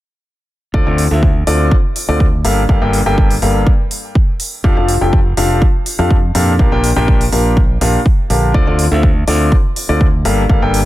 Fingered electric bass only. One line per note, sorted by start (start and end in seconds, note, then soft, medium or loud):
0.74 0.84 D2 loud
0.87 1.09 D2 medium
1.11 1.45 D2 medium
1.47 1.71 D2 medium
2.09 2.42 D2 medium
2.45 2.67 G1 medium
2.69 2.79 G1 medium
2.82 3.04 G1 loud
3.06 3.40 G1 medium
3.42 3.66 G1 medium
4.64 4.74 F1 medium
4.77 4.99 F1 medium
5.01 5.35 F1 medium
5.37 5.61 F1 medium
5.99 6.33 F2 medium
6.35 6.57 F2 medium
6.59 6.70 A#1 medium
6.72 6.94 A#1 loud
6.96 7.30 A#1 medium
7.32 7.79 A#1 medium
7.81 7.96 A#1 medium
8.30 8.52 A#1 medium
8.67 8.89 D2 medium
8.92 9.25 D2 medium
9.28 9.52 D2 medium
9.89 10.23 D2 medium
10.25 10.47 G1 medium
10.50 10.60 G1 loud
10.62 10.84 G1 medium